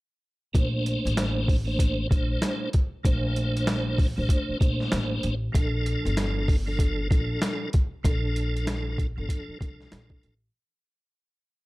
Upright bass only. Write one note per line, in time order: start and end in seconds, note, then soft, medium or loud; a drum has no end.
0.55 0.93 A#1 loud
1.05 2.07 A1 medium
2.11 2.35 A#1 medium
3.05 4.13 A#1 loud
4.18 4.27 A1 medium
4.49 muted upright bass stroke soft
4.61 4.85 A#1 medium
4.92 5.16 A1 medium
5.24 5.47 A1 medium
5.55 5.93 A#1 loud
6.05 7.07 G1 loud
7.11 7.35 A#1 medium
8.05 9.13 A#1 loud
9.18 9.27 G1 medium
9.49 muted upright bass stroke soft
9.61 9.85 C2 medium
9.92 10.16 A#1 loud
10.24 10.47 A1 medium